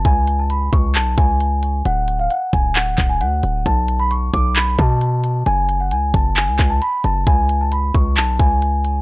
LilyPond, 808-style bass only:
\new Staff \with { instrumentName = "808-style bass" } { \clef bass \time 4/4 \key cis \phrygian \tempo 4 = 133 cis,4. cis,8 b,,8 cis,4. | d,,4 r8 d,,4 d,,8 d,8 d,,8 | b,,4. b,,4 b,4. | fis,,4 cis,8 fis,,8. cis,16 cis,8 r8 fis,,8 |
cis,4. cis,8 b,,8 cis,4. | }